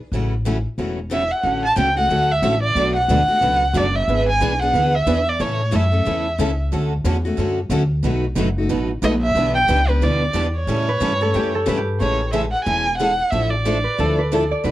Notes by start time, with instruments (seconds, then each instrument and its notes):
0.12 upright bass A1, steel-string acoustic guitar C#3 E3 F#3 A3 C#4 E4 F#4
0.45 steel-string acoustic guitar C#3 E3 F#3 A3 C#4 E4 F#4
0.78 upright bass E1, steel-string acoustic guitar C#3 E3 F#3 A3 C#4 E4 F#4
1.10 steel-string acoustic guitar C#3 E3 F#3 A3 C#4 E4 F#4, violin E5
1.31 violin F#5
1.43 upright bass A1, steel-string acoustic guitar D3 F#3 A3 C#4 F#4 A4
1.65 violin A5
1.76 upright bass C#2, steel-string acoustic guitar D3 F#3 A3 C#4 F#4 A4, violin G5
1.96 steel-string acoustic guitar A3 C#4 F#4, violin F#5
2.09 upright bass D2, steel-string acoustic guitar D3 F#3 A3 C#4 F#4 A4
2.32 violin E5
2.42 upright bass A1, steel-string acoustic guitar D3 F#3 A3 C#4 F#4 A4
2.63 violin D5
2.75 upright bass B1, steel-string acoustic guitar B2 F#3 A3 D4 F#4 B4
2.97 violin F#5
3.08 upright bass D2, steel-string acoustic guitar B2 F#3 A3 D4 F#4 B4
3.28 steel-string acoustic guitar A3 D4 F#4, muted upright bass stroke
3.41 upright bass C#2, steel-string acoustic guitar B2 F#3 A3 D4 F#4 B4
3.74 upright bass F#1, steel-string acoustic guitar B2 F#3 A3 D4 F#4 B4
3.78 violin D5
3.96 violin E5
4.08 upright bass G#1, steel-string acoustic guitar E3 B3 D4 G#4 B4
4.29 violin G#5
4.41 upright bass B1, steel-string acoustic guitar E3 B3 D4 G#4 B4
4.62 steel-string acoustic guitar B3 D4 G#4, violin F#5
4.74 upright bass D2, steel-string acoustic guitar E3 B3 D4 G#4 B4
4.95 violin E5
5.07 upright bass E2, steel-string acoustic guitar E3 B3 D4 G#4 B4
5.29 violin D5
5.40 upright bass A2, steel-string acoustic guitar C#3 E3 A3 C#4 E4 A4, violin C#5
5.71 upright bass F#2, steel-string acoustic guitar C#3 E3 A3 C#4 E4 A4
5.75 violin E5
5.92 steel-string acoustic guitar A3 C#4 A4
6.05 upright bass E2, steel-string acoustic guitar C#3 E3 A3 C#4 E4 A4
6.38 upright bass C#2, steel-string acoustic guitar C#3 E3 A3 C#4 E4 A4
6.72 upright bass D2, steel-string acoustic guitar D3 F#3 A3 C#4 F#4 A4
7.04 upright bass E2, steel-string acoustic guitar D3 F#3 A3 C#4 F#4 A4
7.25 steel-string acoustic guitar A3 C#4 F#4
7.38 upright bass F#2, steel-string acoustic guitar D3 F#3 A3 C#4 F#4 A4
7.70 upright bass D2, steel-string acoustic guitar D3 F#3 A3 C#4 F#4 A4
8.03 upright bass B1, steel-string acoustic guitar B2 F#3 A3 D#4 F#4 B4
8.36 upright bass F#1, steel-string acoustic guitar B2 F#3 A3 D#4 F#4 B4
8.58 steel-string acoustic guitar A3 D#4 F#4
8.69 upright bass A1, steel-string acoustic guitar B2 F#3 A3 D#4 F#4 B4
9.02 upright bass A#1, steel-string acoustic guitar B2 F#3 A3 D#4 F#4 B4, violin D#5
9.22 violin E5
9.35 upright bass B1, steel-string acoustic guitar B2 D3 E3 G3 B3 D4 E4 G4 B4
9.55 violin G5
9.68 upright bass C#2, steel-string acoustic guitar B2 D3 E3 G3 B3 D4 E4 G4 B4
9.88 steel-string acoustic guitar B3 D4 G4, violin B4
10.00 upright bass D2, steel-string acoustic guitar B2 D3 E3 G3 B3 D4 E4 G4 B4, violin D5
10.33 upright bass E2, steel-string acoustic guitar B2 D3 E3 G3 B3 D4 E4 G4 B4
10.56 violin C#5
10.67 upright bass A2, steel-string acoustic guitar C#3 E3 G3 A3 C#4 E4 G4 A4
10.89 harp B4
11.01 upright bass G2, steel-string acoustic guitar C#3 E3 G3 A3 C#4 E4 G4 A4
11.21 steel-string acoustic guitar A3 C#4 G4, harp A4
11.34 upright bass F#2, steel-string acoustic guitar C#3 E3 G3 A3 C#4 E4 G4 A4, harp G4
11.55 harp A4
11.66 upright bass G2, steel-string acoustic guitar C#3 E3 G3 A3 C#4 E4 G4 A4, harp B4
11.77 harp G4
11.99 upright bass A1, steel-string acoustic guitar C#3 E3 G#3 A3 C#4 E4 G#4 A4, violin C#5
12.32 steel-string acoustic guitar C#3 E3 G#3 A3 C#4 E4 G#4 A4, violin E5
12.52 violin F#5
12.65 upright bass E1, steel-string acoustic guitar C#3 E3 G#3 A3 C#4 E4 G#4 A4, violin G#5
12.98 steel-string acoustic guitar C#3 E3 G#3 A3 C#4 E4 G#4 A4, violin F#5
13.31 upright bass A1, steel-string acoustic guitar F3 A3 D4 E4 A4, violin E5
13.51 violin D5
13.65 steel-string acoustic guitar F3 A3 D4 E4 A4
13.84 harp B4
13.98 upright bass D2, steel-string acoustic guitar F3 A3 D4 E4 A4, harp A4
14.19 harp B4
14.32 steel-string acoustic guitar F3 A3 D4 E4 A4, harp A4
14.51 harp D5
14.64 upright bass B1, steel-string acoustic guitar B2 F#3 A3 D#4 F#4 B4, harp B4